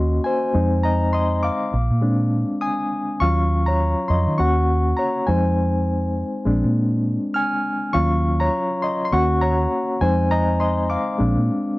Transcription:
Already playing: fingered electric bass D#2, reed electric piano A#3 C#4 F#4 D#5 C6
0.24 reed electric piano C5 G#5
0.54 fingered electric bass F2, reed electric piano G#3 C4 D#4
0.83 reed electric piano D#5 A#5
1.13 reed electric piano D#5 C6
1.43 reed electric piano F5 D6
1.73 fingered electric bass A#1
1.91 fingered electric bass A#2
2.01 reed electric piano G#3 C4 D4
2.61 reed electric piano G#5 D#6
3.20 fingered electric bass D#2, reed electric piano F#3 C#4 F4 F5 C#6
3.66 reed electric piano C#5 A#5
4.08 fingered electric bass F2, reed electric piano D#5 C6
4.27 fingered electric bass D#3
4.38 fingered electric bass D#2, reed electric piano A#3 C#4 F#4 F#5 C#6
4.97 reed electric piano C#5 A#5
5.27 fingered electric bass F2, reed electric piano G#3 C4 D#4 C5 G#5
6.45 fingered electric bass A#1, reed electric piano G#3 C4 D4
6.64 fingered electric bass A#2
7.34 reed electric piano G#5 F6
7.93 fingered electric bass D#2, reed electric piano F#3 C#4 F4 F5 C#6
8.40 reed electric piano C#5 A#5
8.82 reed electric piano D#5 C6
9.05 reed electric piano C6
9.12 fingered electric bass D#2, reed electric piano A#3 C#4 F#4 F#5 C#6
9.41 reed electric piano C#5 A#5
10.01 fingered electric bass F2, reed electric piano G#3 C4 D#4 C5 G#5
10.31 reed electric piano D#5 A#5
10.60 reed electric piano D#5 C6
10.90 reed electric piano F5 D6
11.18 fingered electric bass A#1, reed electric piano G#3 C4 D4
11.37 fingered electric bass A#2

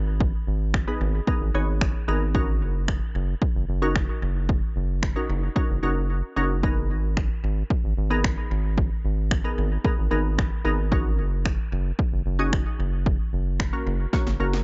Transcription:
Already playing: analog synth bass G#1, synth pluck B3 D#4 G#4 A#4
0.20 kick
0.47 analog synth bass G#1
0.74 finger snap, kick
0.87 synth pluck B3 D#4 G#4 B4
1.01 analog synth bass G#1
1.27 synth pluck B3 D#4 G#4 A#4, kick
1.41 analog synth bass G#1
1.54 analog synth bass G#1, synth pluck B3 D#4 G#4 C#5
1.81 finger snap, kick
2.08 analog synth bass G#1, synth pluck B3 D#4 G#4 A#4
2.35 synth pluck C#4 D#4 F#4 A#4, kick
2.62 analog synth bass F#1
2.88 finger snap, kick
3.15 analog synth bass F#1
3.42 kick
3.55 analog synth bass F#1
3.69 analog synth bass F#1
3.82 synth pluck C#4 D#4 F#4 A#4
3.96 finger snap, kick
4.22 analog synth bass F#1
4.49 kick
4.76 analog synth bass F#1
5.03 finger snap, kick
5.16 synth pluck C#4 D#4 F#4 A#4
5.29 analog synth bass F#1
5.56 synth pluck C#4 D#4 F#4 A#4, kick
5.70 analog synth bass F#1
5.83 analog synth bass F#1, synth pluck C#4 D#4 F#4 A#4
6.36 analog synth bass F#1, synth pluck C#4 D#4 F#4 A#4
6.63 synth pluck B3 D#4 G#4 A#4, kick
6.90 analog synth bass G#1
7.17 finger snap, kick
7.44 analog synth bass G#1
7.70 kick
7.84 analog synth bass G#1
7.97 analog synth bass G#1
8.10 synth pluck B3 D#4 G#4 A#4
8.24 finger snap, kick
8.51 analog synth bass G#1
8.78 kick
9.05 analog synth bass G#1
9.31 finger snap, kick
9.44 synth pluck B3 D#4 G#4 A#4
9.58 analog synth bass G#1
9.84 synth pluck B3 D#4 G#4 A#4, kick
9.98 analog synth bass G#1
10.11 analog synth bass G#1, synth pluck B3 D#4 G#4 A#4
10.38 finger snap, kick
10.65 analog synth bass G#1, synth pluck B3 D#4 G#4 A#4
10.92 synth pluck C#4 D#4 F#4 A#4, kick
11.19 analog synth bass F#1
11.45 finger snap, kick
11.72 analog synth bass F#1
11.99 kick
12.12 analog synth bass F#1
12.26 analog synth bass F#1
12.39 synth pluck C#4 D#4 F#4 G#4
12.53 finger snap, kick
12.79 analog synth bass F#1
13.06 kick
13.33 analog synth bass F#1
13.60 finger snap, kick
13.73 synth pluck A#3 C#4 F#4 A#4
13.87 analog synth bass F#1
14.13 synth pluck A#3 C#4 F#4 C#5, kick, snare
14.27 analog synth bass F#1, snare
14.40 analog synth bass F#1, synth pluck A#3 C#4 F#4 A#4
14.53 snare

